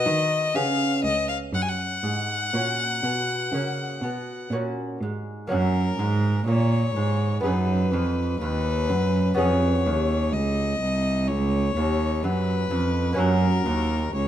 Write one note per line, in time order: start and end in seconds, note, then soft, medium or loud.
0.00 0.51 B3 soft
0.00 0.51 F#4 soft
0.00 0.52 B4 soft
0.00 0.57 D#5 medium
0.06 0.51 D#3 soft
0.06 0.52 D#3 medium
0.55 1.01 C#3 medium
0.55 1.00 C#3 soft
0.55 1.50 B3 soft
0.55 1.50 C#4 soft
0.55 1.50 G#4 soft
0.55 1.04 F5 medium
1.04 1.50 C#2 medium
1.04 1.28 D#5 medium
1.29 1.37 F5 medium
1.53 2.00 F#2 medium
1.53 2.00 F#2 soft
1.53 1.63 F#5 medium
1.62 1.70 G#5 medium
1.69 4.51 F#5 medium
2.03 2.50 G#2 medium
2.03 2.49 G#2 soft
2.53 3.00 A#2 medium
2.53 2.99 A#2 soft
2.53 2.99 A#3 soft
2.53 3.00 C#4 soft
2.53 3.49 F#4 soft
3.03 3.49 B2 soft
3.52 3.98 C#3 medium
3.52 3.98 C#3 soft
3.52 3.98 A#3 soft
3.52 3.98 C#4 soft
3.52 4.48 F#4 soft
4.01 4.47 B2 soft
4.01 4.48 B2 soft
4.50 4.97 A#2 medium
4.50 4.97 A#2 soft
4.50 4.97 A#3 soft
4.50 4.97 C#4 soft
4.50 5.47 F#4 soft
5.00 5.46 G#2 soft
5.00 5.47 G#2 soft
5.47 5.95 F#2 medium
5.47 5.96 A#3 soft
5.47 5.97 C#4 soft
5.47 7.40 F#4 soft
5.47 6.44 A#4 medium
5.52 5.96 F#2 medium
5.98 6.46 G#2 medium
5.98 6.44 G#2 medium
6.46 6.95 A#2 medium
6.46 6.92 A#2 soft
6.46 7.43 C#5 medium
6.95 7.43 G#2 medium
6.95 7.40 G#2 medium
7.41 7.93 F#2 medium
7.41 7.89 B3 soft
7.41 9.33 D#4 soft
7.41 9.33 G#4 soft
7.41 8.39 B4 medium
7.45 7.89 F#2 soft
7.92 8.40 F2 medium
7.92 8.37 F2 medium
8.40 8.91 D#2 medium
8.40 8.86 D#2 medium
8.40 9.35 B4 medium
8.89 9.37 F#2 medium
8.89 9.34 F#2 medium
9.34 9.88 F2 medium
9.34 9.82 B3 medium
9.34 13.13 C#4 soft
9.34 13.15 G#4 soft
9.34 10.34 C#5 medium
9.39 9.82 F2 medium
9.86 10.29 D#2 medium
9.86 10.35 D#2 medium
10.32 10.80 C#2 medium
10.32 11.29 D#5 medium
10.81 11.30 C2 medium
11.28 11.75 C#2 medium
11.28 12.25 C#5 medium
11.76 12.25 D#2 medium
11.76 12.20 D#2 medium
12.23 12.70 F#2 medium
12.23 12.68 F#2 medium
12.23 13.21 B4 medium
12.71 13.15 F2 medium
12.71 13.18 F2 medium
13.13 13.62 A#3 soft
13.13 13.63 C#4 medium
13.13 14.28 F#4 soft
13.18 13.62 F#2 medium
13.18 13.66 F#2 medium
13.18 14.15 A#4 medium
13.66 14.10 D#2 medium
13.66 14.14 D#2 medium
14.14 14.28 C#2 medium
14.14 14.28 C#5 medium